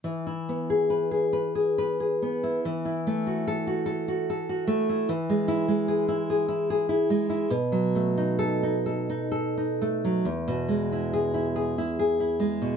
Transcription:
\new Staff \with { instrumentName = "Nylon-string guitar" } { \time 6/8 \key e \major \tempo 4. = 47 << { r4 b'8 r4. | r4 a'8 r4. | r4 gis'8 r4. | r4 a'8 r4. |
r4 gis'8 r4. | } \\ { e16 e'16 b16 gis'8 gis'16 b'16 gis'16 b'16 gis'16 b16 e'16 | e16 e'16 a16 fis'8 fis'16 a'16 fis'16 a'16 fis'16 a16 e'16 | e16 gis16 e'16 gis8 e'16 gis'16 e'16 gis'16 e'16 gis16 e'16 | b,16 fis16 a16 dis'8 dis'16 a'16 dis'16 a'16 dis'16 a16 fis16 |
e,16 b,16 gis16 e'8 e'16 gis'16 e'16 gis'16 e'16 gis16 b,16 | } >> }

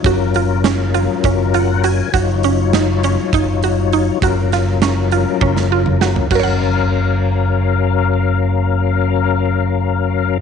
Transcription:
<<
  \new Staff \with { instrumentName = "Synth arpeggio sound" } { \time 7/8 \key fis \major \tempo 4 = 101 fis'8 eis'8 cis'8 eis'8 cis'8 eis'8 fis'8 | fis'8 cis'8 dis'8 cis'8 dis'8 fis'8 dis'8 | fis'8 eis'8 cis'8 eis'8 cis'8 eis'8 fis'8 | <fis' ais' cis'' fis''>2.~ <fis' ais' cis'' fis''>8~ |
<fis' ais' cis'' fis''>2.~ <fis' ais' cis'' fis''>8 | }
  \new Staff \with { instrumentName = "Tonewheel organ" } { \time 7/8 \key fis \major << { r2 r8 fis''8 gis''8 | r2. r8 | r2. r8 | r2. r8 |
r2. r8 | } \\ { <fis cis' eis' ais'>2.~ <fis cis' eis' ais'>8 | <fis dis' eis' cis''>2.~ <fis dis' eis' cis''>8 | <fis cis' eis' ais'>2.~ <fis cis' eis' ais'>8 | <fis cis' ais' eis''>2.~ <fis cis' ais' eis''>8~ |
<fis cis' ais' eis''>2.~ <fis cis' ais' eis''>8 | } >> }
  \new Staff \with { instrumentName = "Fingered electric bass" } { \clef bass \time 7/8 \key fis \major fis,,2 fis,,4. | fis,,2 fis,,4. | fis,,2 fis,,4. | fis,,2.~ fis,,8~ |
fis,,2.~ fis,,8 | }
  \new DrumStaff \with { instrumentName = "Drums" } \drummode { \time 7/8 <hh bd>8 hh8 <hh sn>8 hh8 <hh bd>8 hh8 hh8 | <hh bd>8 hh8 <hh sn>8 hh8 <hh bd>8 hh8 hh8 | <hh bd>8 <hh sn>8 <hh sn>8 hh8 <bd tommh>16 sn8 toml16 sn16 tomfh16 | <cymc bd>4 r4 r4. |
r4 r4 r4. | }
>>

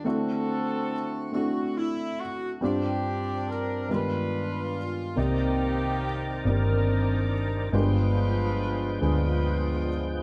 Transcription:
<<
  \new Staff \with { instrumentName = "Horn section" } { \time 6/8 \key g \phrygian \tempo 4. = 47 << { a'4. fis'8 e'8 fis'8 | g'4 bes'8 b'4 r8 | g'4. bes'4 r8 | b'4. b'4 r8 | } \\ { <c' fis'>4. r4. | <c' d'>4. <d' f'>4. | <bes ees'>4. <d' ees'>4. | <d' f'>4. <d' f'>4. | } >> }
  \new Staff \with { instrumentName = "Grand piano" } { \time 6/8 \key g \phrygian <a c' d' e' fis'>4 r8 <a c' d' e' a'>4 r8 | <g c' d' f' g'>4 r8 <ees aes b f' g'>4 r8 | <bes c' ees' g' d''>4 r8 <ees bes c' g' d''>4 r8 | <aes bes b d' f' g'>4 r8 <aes b d' f' aes'>4 r8 | }
  \new Staff \with { instrumentName = "Grand piano" } { \clef bass \time 6/8 \key g \phrygian d4. r4. | g,4. g,4. | c4. r4. | g,4. r4. | }
  \new Staff \with { instrumentName = "Tonewheel organ" } { \time 6/8 \key g \phrygian r2. | r2. | <ees c' bes' d''>2. | <f aes b g''>2. | }
  \new Staff \with { instrumentName = "Fingered electric bass" } { \clef bass \time 6/8 \key g \phrygian r2. | r2. | c,4. g,,4. | g,,4. d,4. | }
>>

